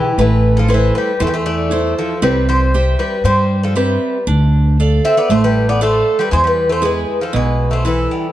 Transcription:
Already playing: upright bass B1, bouzouki E3 G4
0.18 upright bass A1, bouzouki E3 B4, steel-string acoustic guitar A3
0.57 bouzouki F3 A4
0.68 steel-string acoustic guitar E4 A4 C5, bouzouki B4
0.74 bouzouki E3
0.95 bouzouki G3 B4
1.20 upright bass E2, steel-string acoustic guitar E3, bouzouki A3 C5
1.27 bouzouki G3 B4
1.34 bouzouki A3 C5
1.46 bouzouki A3 D5
1.71 steel-string acoustic guitar E4 A4 C5
1.98 bouzouki F3 A4
2.22 upright bass C2, bouzouki G3 B4, steel-string acoustic guitar C4
2.49 bouzouki G3 C5
2.74 steel-string acoustic guitar G4 C5 E5
2.99 bouzouki G3 B4
3.24 upright bass G2, bouzouki G3 C5, steel-string acoustic guitar G3
3.63 bouzouki F3 A4
3.75 bouzouki G3 B4, steel-string acoustic guitar C4 G4 E5
4.27 upright bass D2, steel-string acoustic guitar D4
4.80 steel-string acoustic guitar A4 D5 F5
5.05 bouzouki C4 E5
5.17 bouzouki B3 D5
5.29 upright bass A1, steel-string acoustic guitar A3, bouzouki A3 C5
5.44 bouzouki G3 B4
5.69 bouzouki B3 D5
5.81 bouzouki A3 C5, steel-string acoustic guitar A4 D5 F5
6.19 bouzouki G3 B4
6.31 upright bass E2, steel-string acoustic guitar E3, bouzouki G#3 C5
6.44 bouzouki G3 B4
6.69 bouzouki A3 C5
6.82 bouzouki G#3 B4, steel-string acoustic guitar E4 G#4 B4
7.21 bouzouki F3 A4
7.33 upright bass B1, steel-string acoustic guitar B2, bouzouki G#3 B4
7.71 bouzouki A3 C5
7.85 bouzouki E3 A4, steel-string acoustic guitar E4 B4
8.11 bouzouki G3

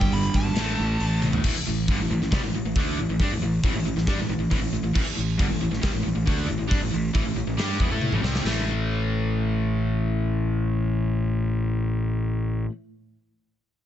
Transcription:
Already playing: overdriven electric guitar G2 D3 G3, lead electric guitar G5
0.01 kick
0.12 fingered electric bass G1, lead electric guitar B5, open hi-hat
0.33 fingered electric bass G#1, lead electric guitar A5, kick
0.55 fingered electric bass A1, overdriven electric guitar A2 E3, snare, open hi-hat
0.59 overdriven electric guitar A3
0.79 fingered electric bass A1
1.00 fingered electric bass A1, open hi-hat
1.22 high tom
1.33 floor tom
1.44 fingered electric bass A1, overdriven electric guitar A2 E3, kick, crash
1.54 muted fingered electric bass stroke, muted overdriven electric guitar stroke
1.67 fingered electric bass A1, overdriven electric guitar A2 E3
1.88 fingered electric bass G1, overdriven electric guitar G2 D3, kick, open hi-hat
1.99 fingered electric bass A1, overdriven electric guitar A2 E3
2.10 fingered electric bass A1, overdriven electric guitar A2 E3
2.22 fingered electric bass A1, overdriven electric guitar A2 E3, snare
2.31 fingered electric bass C2, overdriven electric guitar C3 G3, kick, snare, open hi-hat
2.43 fingered electric bass A1, overdriven electric guitar A2 E3
2.54 fingered electric bass A1, overdriven electric guitar A2 E3
2.64 fingered electric bass A1, overdriven electric guitar A2 E3
2.75 fingered electric bass D2, overdriven electric guitar D3 A3 D4, kick, open hi-hat
2.98 fingered electric bass A1, overdriven electric guitar A2 E3
3.09 fingered electric bass A1, overdriven electric guitar A2 E3
3.20 fingered electric bass G2, overdriven electric guitar G3 D4, kick, open hi-hat
3.31 fingered electric bass A1, overdriven electric guitar A2 E3
3.41 fingered electric bass A1, overdriven electric guitar A2 E3
3.63 fingered electric bass A1, overdriven electric guitar A2 E3, kick, open hi-hat
3.74 fingered electric bass A1, overdriven electric guitar A2 E3
3.84 fingered electric bass A1, overdriven electric guitar A2 E3
3.96 fingered electric bass A1, overdriven electric guitar A2 E3, snare
4.07 fingered electric bass G2, overdriven electric guitar G3 D4, kick, snare, open hi-hat
4.18 fingered electric bass A1, overdriven electric guitar A2 E3
4.29 fingered electric bass A1, overdriven electric guitar A2 E3
4.38 fingered electric bass A1, overdriven electric guitar A2 E3
4.50 fingered electric bass A1, overdriven electric guitar A2 E3, kick, open hi-hat
4.60 fingered electric bass A1, overdriven electric guitar A2 E3
4.72 fingered electric bass A1, overdriven electric guitar A2 E3
4.82 fingered electric bass A1, overdriven electric guitar A2 E3
4.94 fingered electric bass A1, overdriven electric guitar A2 E3, kick, crash
5.05 muted overdriven electric guitar stroke, muted fingered electric bass stroke
5.15 fingered electric bass A1, overdriven electric guitar A2 E3
5.38 fingered electric bass G1, overdriven electric guitar G2 D3, kick, open hi-hat
5.49 fingered electric bass A1, overdriven electric guitar A2 E3
5.61 fingered electric bass A1, overdriven electric guitar A2 E3
5.72 fingered electric bass A1, overdriven electric guitar A2 E3, snare
5.82 fingered electric bass C2, overdriven electric guitar C3 G3, kick, snare, open hi-hat
5.93 fingered electric bass A1, overdriven electric guitar A2 E3
6.03 fingered electric bass A1, overdriven electric guitar A2 E3
6.16 fingered electric bass A1, overdriven electric guitar A2 E3
6.26 fingered electric bass D2, overdriven electric guitar D3 A3 D4, kick, open hi-hat
6.47 fingered electric bass A1, overdriven electric guitar A2 E3
6.58 fingered electric bass A1, overdriven electric guitar A2 E3
6.68 fingered electric bass G2, overdriven electric guitar G3 D4, kick, open hi-hat
6.79 fingered electric bass A1, overdriven electric guitar A2 E3
6.91 fingered electric bass A1, overdriven electric guitar A2 E3
7.14 fingered electric bass A1, overdriven electric guitar A2 E3, kick, open hi-hat
7.25 fingered electric bass A1, overdriven electric guitar A2 E3
7.36 fingered electric bass A1, overdriven electric guitar A2 E3
7.47 fingered electric bass A1, overdriven electric guitar A2 E3
7.57 fingered electric bass G2, overdriven electric guitar G3 D4 G4, snare, open hi-hat
7.79 fingered electric bass E2, overdriven electric guitar E3 B3, kick
7.91 fingered electric bass A2, overdriven electric guitar A3 E4 A4
8.02 high tom
8.12 fingered electric bass A1, overdriven electric guitar A2 E3, mid tom
8.22 fingered electric bass C2, overdriven electric guitar C3 G3 C4, snare
8.35 snare
8.44 fingered electric bass A1, overdriven electric guitar A2 E3 A3, snare, splash

